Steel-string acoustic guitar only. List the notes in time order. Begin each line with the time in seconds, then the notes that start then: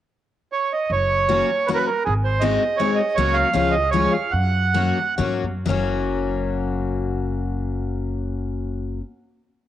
1.28 F#3 A#3 C#4 F#4
1.68 F#3 A#3 C#4 F#4
2.41 G#3 C4 D#4 F#4
2.80 G#3 C4 D#4 F#4
3.18 F#3 A#3 C#4 F#4
3.53 F3 G#3 C#4 F4
3.93 F3 G#3 C#4 F4
4.74 F#3 A#3 C#4 F#4
5.18 F#3 A#3 C#4 F#4
5.66 F#3 A#3 C#4
5.70 F#4